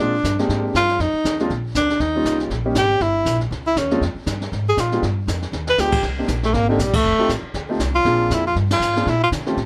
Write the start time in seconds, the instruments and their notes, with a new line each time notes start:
0.00 upright bass A#2, grand piano G#3 A#3 C4 D4 F4, tenor saxophone D4
0.24 upright bass G2, kick, snare, hi-hat pedal
0.39 grand piano G#3 A#3 C4 D4 G4, snare
0.49 upright bass G#2, brush sweep, kick, snare
0.74 upright bass G2, tenor saxophone F4, kick, snare, hi-hat pedal
0.89 snare
0.99 upright bass F2, tenor saxophone D#4, brush sweep, kick, snare
1.13 muted upright bass stroke
1.24 upright bass D#2, kick, snare, hi-hat pedal
1.39 grand piano G#3 A#3 C4 D4 F4, snare
1.50 upright bass A#1, brush sweep, kick, snare
1.75 upright bass D2, tenor saxophone D4, kick, snare, hi-hat pedal
1.90 snare
2.00 upright bass D#2, tenor saxophone D#4, brush sweep, kick, snare
2.16 grand piano G3 A#3 C#4 D#4 F4
2.25 upright bass C2, kick, snare, hi-hat pedal
2.40 snare
2.50 upright bass A#1, brush sweep, kick, snare
2.65 grand piano G3 A#3 C#4 D#4 G4
2.75 upright bass G#1, tenor saxophone G4, kick, snare, hi-hat pedal
3.00 upright bass G1, tenor saxophone E4, brush sweep, kick, snare
3.25 upright bass A#1, kick, snare, hi-hat pedal
3.41 snare
3.51 upright bass C#2, brush sweep, kick, snare
3.67 tenor saxophone E4
3.76 upright bass D#2, tenor saxophone C#4, kick, snare, hi-hat pedal
3.91 grand piano G#3 A#3 C4 D4 F4, snare
4.01 upright bass F2, brush sweep, kick, snare
4.15 muted upright bass stroke
4.26 upright bass G2, kick, snare, hi-hat pedal
4.41 snare
4.52 upright bass G#2, brush sweep, kick, snare
4.69 tenor saxophone G#4
4.77 upright bass A#2, tenor saxophone F4, kick, snare, hi-hat pedal
4.92 grand piano G#3 B3 D4 F4 G4, snare
5.02 upright bass G2, brush sweep, kick, snare
5.27 upright bass F2, kick, snare, hi-hat pedal
5.42 snare
5.52 upright bass D#2, snare
5.67 tenor saxophone B4, snare
5.78 upright bass D2, grand piano G#3 B3 D4 F4 G4, tenor saxophone G4, snare, hi-hat pedal
5.92 kick, crash
6.03 upright bass C2, brush sweep, kick, snare
6.19 grand piano A#3 C4 D4 D#4 G4
6.28 upright bass A#1, kick, snare, hi-hat pedal
6.43 tenor saxophone A3, snare
6.53 upright bass G#1, tenor saxophone A#3, brush sweep, kick, snare
6.69 tenor saxophone D3, grand piano A#3 C4 D4 D#4 G4
6.78 upright bass A#1, tenor saxophone G3, kick, snare, hi-hat pedal
6.94 tenor saxophone A3, kick, crash
7.03 upright bass F1, brush sweep
7.18 grand piano A3 C4 D#4 F4 G4, muted upright bass stroke
7.29 upright bass A1, kick, snare, hi-hat pedal
7.42 muted upright bass stroke
7.54 upright bass D2, brush sweep, kick, snare
7.69 grand piano A3 C4 D#4 F4 G4
7.79 upright bass C2, kick, snare, hi-hat pedal
7.95 tenor saxophone F4
8.05 upright bass A#1, grand piano A#3 C4 D4 F4 G#4, brush sweep, kick, snare
8.30 upright bass F2, tenor saxophone E4, kick, snare, hi-hat pedal
8.47 tenor saxophone F4
8.55 upright bass G2, brush sweep, kick, snare
8.71 tenor saxophone F4, snare, ride
8.80 upright bass G#2, hi-hat pedal
8.96 grand piano A#3 C4 D4 F4 G#4, snare
9.06 upright bass A#2, tenor saxophone E4, brush sweep, kick, snare
9.24 tenor saxophone F4
9.31 upright bass D3, kick, snare, hi-hat pedal
9.47 grand piano A3 C4 C#4 F4 G4, snare
9.57 upright bass A2, brush sweep, kick, snare